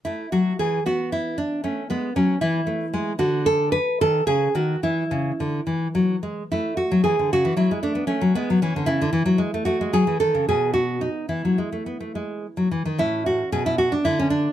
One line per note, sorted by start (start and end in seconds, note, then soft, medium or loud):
0.05 0.26 A3 soft
0.05 0.31 E4 medium
0.32 0.52 F#3 soft
0.32 0.58 F#4 medium
0.59 0.79 E3 soft
0.59 0.85 G#4 medium
0.86 1.37 B3 medium
0.86 1.11 F#4 medium
1.12 1.37 E4 medium
1.38 1.63 D4 medium
1.64 1.82 A3 soft
1.64 1.89 C#4 medium
1.90 2.08 G#3 medium
1.90 2.14 B3 medium
2.16 2.34 F#3 medium
2.16 2.40 C#4 medium
2.41 2.60 E3 medium
2.41 3.15 E4 medium
2.67 2.85 A3 medium
2.94 3.12 G#3 medium
3.19 3.77 D3 medium
3.19 3.44 F#4 medium
3.46 3.71 A4 medium
3.72 3.98 B4 medium
4.01 4.20 D#3 medium
4.01 4.26 A4 medium
4.27 4.47 C#3 medium
4.27 4.53 G#4 medium
4.55 4.75 D#3 medium
4.55 4.82 F#4 medium
4.83 5.03 E3 medium
4.83 6.19 E4 medium
5.11 5.31 C#3 medium
5.40 5.60 D3 soft
5.67 5.87 E3 soft
5.95 6.15 F#3 soft
6.23 6.43 G#3 soft
6.52 6.81 A3 soft
6.52 6.77 E4 medium
6.77 7.03 F#4 medium
6.91 7.04 F#3 medium
7.04 7.17 E3 soft
7.04 7.29 G#4 medium
7.19 7.31 D3 soft
7.33 7.45 C#3 medium
7.33 7.57 F#4 medium
7.45 7.56 E3 medium
7.57 7.69 F#3 medium
7.57 7.82 E4 medium
7.71 7.82 G#3 medium
7.83 7.95 A3 medium
7.83 8.07 D4 medium
7.95 8.07 B3 medium
8.07 8.21 A3 medium
8.07 8.33 C#4 medium
8.21 8.34 F#3 medium
8.35 8.48 G#3 medium
8.35 8.61 B3 medium
8.50 8.62 F#3 medium
8.62 8.75 E3 medium
8.62 8.86 C#4 medium
8.76 8.88 D3 medium
8.86 9.00 C#3 medium
8.86 9.63 E4 medium
9.02 9.12 D3 medium
9.13 9.25 E3 medium
9.26 9.39 F#3 medium
9.38 9.52 G#3 medium
9.54 9.65 A3 medium
9.65 9.79 A3 medium
9.65 9.91 F#4 medium
9.81 9.93 G#3 medium
9.93 10.06 F#3 medium
9.93 10.19 G#4 medium
10.07 10.20 E3 medium
10.20 10.33 D#3 medium
10.20 10.46 A4 medium
10.34 10.47 C#3 medium
10.49 11.07 B2 medium
10.49 10.73 G#4 medium
10.74 11.00 F#4 medium
11.01 11.28 D#4 medium
11.29 11.42 E3 soft
11.29 12.67 E4 medium
11.45 11.57 F#3 soft
11.58 11.71 G#3 soft
11.72 11.85 A3 soft
11.86 12.00 B3 soft
12.00 12.14 A3 soft
12.15 12.46 G#3 soft
12.57 12.71 F#3 soft
12.71 12.85 E3 soft
12.85 12.98 D#3 soft
12.98 13.41 A2 soft
12.98 14.18 C#4 soft
12.98 13.25 E4 medium
13.26 13.52 F#4 medium
13.52 13.94 B2 medium
13.52 13.66 G#4 medium
13.66 13.78 E4 medium
13.78 13.92 F#4 medium
13.92 14.05 D4 medium
14.05 14.47 D3 medium
14.05 14.18 E4 medium
14.19 14.30 C#4 medium
14.30 14.53 D4 medium